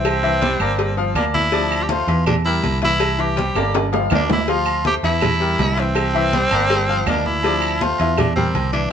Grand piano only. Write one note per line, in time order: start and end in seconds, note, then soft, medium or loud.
0.00 0.17 E3 medium
0.00 0.17 E4 medium
0.00 0.17 E5 medium
0.23 0.39 E3 medium
0.23 0.39 E4 medium
0.23 0.39 E5 medium
0.42 0.57 G3 medium
0.42 0.57 G4 medium
0.42 0.57 C5 medium
0.60 0.91 A#3 medium
0.60 0.91 A#4 medium
0.60 0.91 D5 medium
0.97 1.12 F3 medium
0.97 1.13 F4 medium
0.97 1.13 F5 medium
1.15 1.46 A#3 medium
1.15 1.46 A#4 medium
1.15 1.46 D5 medium
1.52 1.83 F3 medium
1.52 1.83 D4 medium
1.52 1.83 D5 medium
1.90 2.05 A3 medium
1.90 2.05 A4 medium
1.90 2.05 C5 medium
2.08 2.38 E3 medium
2.08 2.39 E4 medium
2.08 2.39 E5 medium
2.46 2.76 G3 medium
2.46 2.76 G4 medium
2.46 2.76 A#4 medium
2.82 3.12 E3 medium
2.82 3.13 E4 medium
2.82 3.13 E5 medium
3.19 3.34 E3 medium
3.19 3.34 E4 medium
3.19 3.34 E5 medium
3.36 3.52 G3 medium
3.36 3.52 G4 medium
3.36 3.52 C5 medium
3.56 3.86 A#3 medium
3.56 3.86 A#4 medium
3.56 3.86 D5 medium
3.92 4.08 F3 medium
3.92 4.08 F4 medium
3.92 4.08 F5 medium
4.11 4.41 A#3 medium
4.11 4.41 A#4 medium
4.11 4.42 D5 medium
4.49 4.79 F3 medium
4.49 4.79 F4 medium
4.49 4.79 F5 medium
4.85 5.00 A3 medium
4.85 5.01 A4 medium
4.85 5.01 C5 medium
5.04 5.34 E3 medium
5.04 5.34 E4 medium
5.04 5.34 E5 medium
5.40 5.70 G3 medium
5.40 5.71 G4 medium
5.40 5.71 A#4 medium
5.77 6.08 E3 medium
5.77 6.08 E4 medium
5.77 6.08 E5 medium
6.14 6.29 E3 loud
6.14 6.30 E4 loud
6.14 6.30 E5 medium
6.33 6.48 G3 medium
6.33 6.48 G4 medium
6.33 6.49 C5 medium
6.53 6.82 A#3 medium
6.53 6.82 A#4 medium
6.53 6.82 D5 medium
6.89 7.04 F3 medium
6.89 7.04 F4 medium
6.89 7.04 F5 medium
7.08 7.38 A#3 medium
7.08 7.38 A#4 medium
7.08 7.38 D5 medium
7.45 7.74 F3 medium
7.45 7.75 D4 medium
7.45 7.75 D5 medium
7.82 7.96 A3 medium
7.82 7.96 A4 medium
7.82 7.97 C5 medium
8.01 8.30 E3 medium
8.01 8.30 E4 medium
8.01 8.30 E5 medium
8.37 8.67 G3 medium
8.37 8.67 G4 medium
8.37 8.67 A#4 medium
8.73 8.88 E3 medium
8.73 8.89 E4 medium
8.73 8.89 E5 medium